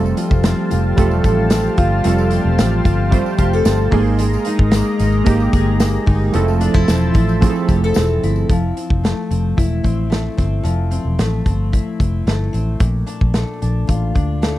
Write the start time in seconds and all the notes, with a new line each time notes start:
Already playing: F1 F3 G3 A3 C4 F4 G4 A4 C5 F5 A5
0.06 tambourine
0.17 F4, closed hi-hat, tambourine
0.31 F1, kick, tambourine
0.44 C4, snare, closed hi-hat, tambourine
0.70 F1 F4, closed hi-hat, tambourine
0.96 E1 G3 A3 C4 F4 A4, kick, closed hi-hat, tambourine
1.11 tambourine
1.24 A1 A4, kick, closed hi-hat, tambourine
1.50 C4, snare, closed hi-hat, tambourine
1.77 G1 F4, kick, closed hi-hat
2.04 F1 F3 G3 A3 C4 F4 A4, closed hi-hat, tambourine
2.18 tambourine
2.31 F4, closed hi-hat, tambourine
2.45 E1
2.58 A1 C4, snare, closed hi-hat, tambourine
2.85 G1 F4 F5, kick, closed hi-hat, tambourine
3.11 G3 A3 C4 F4 C5 G5, kick, closed hi-hat, tambourine
3.26 tambourine
3.38 F1 G4 F5, kick, closed hi-hat, tambourine
3.53 A4
3.65 G1 C4 A5, snare, closed hi-hat, tambourine
3.91 G#1 G#3 A#3 D#4 G#4 A#4 D#5 A#5 C6, kick, open hi-hat
4.19 G#3, closed hi-hat, tambourine
4.33 tambourine
4.45 D#4, closed hi-hat, tambourine
4.59 G#1, kick
4.71 A#3, snare, closed hi-hat, tambourine
4.99 G#1 D#4, closed hi-hat, tambourine
5.12 tambourine
5.24 G#1 A#3 D#4 G4, kick, closed hi-hat, tambourine
5.40 tambourine
5.53 G1 G#4, kick, closed hi-hat, tambourine
5.80 A#3, snare, closed hi-hat, tambourine
6.06 G1 D#4, kick, open hi-hat
6.32 F1 F3 A3 C4 E4 A4 C5 E5 A5, closed hi-hat, tambourine
6.48 tambourine
6.61 D4, closed hi-hat, tambourine
6.74 F1 E4, kick, tambourine
6.88 E1 C4, snare, closed hi-hat, tambourine
7.14 A1 E4, kick, closed hi-hat, tambourine
7.29 tambourine
7.40 F3 A3 C4 E4 G#4, kick, closed hi-hat, tambourine
7.50 A4
7.56 tambourine
7.68 F1 G4, kick, closed hi-hat, tambourine
7.84 A4
7.94 E1 C4, snare, closed hi-hat, tambourine
8.23 G1 E4, closed hi-hat
8.36 tambourine
8.50 F1 F3, kick, closed hi-hat
8.77 C4, closed hi-hat
8.90 F1, kick
9.04 A3, snare, closed hi-hat
9.31 F1 C4, closed hi-hat
9.57 E1 E4, kick, closed hi-hat
9.84 A1 C4, kick, closed hi-hat
10.10 A3, snare, closed hi-hat
10.37 G1 C4, kick, snare, closed hi-hat
10.63 F1 F3, closed hi-hat
10.91 C4, closed hi-hat
11.05 E1
11.18 A1 A3, snare, closed hi-hat
11.46 G1 C4, kick, closed hi-hat
11.72 E4, kick, closed hi-hat
12.00 F1 C4, kick, closed hi-hat
12.27 G1 A3, snare, closed hi-hat
12.53 A1 C4, closed hi-hat
12.80 A#1 A#2, kick, closed hi-hat
13.06 D4, closed hi-hat
13.21 A#1, kick
13.34 A3, snare, closed hi-hat
13.62 A#1 D4, closed hi-hat
13.87 A1 F4, kick, closed hi-hat
14.15 D2 D4, kick, closed hi-hat
14.42 A3, snare, closed hi-hat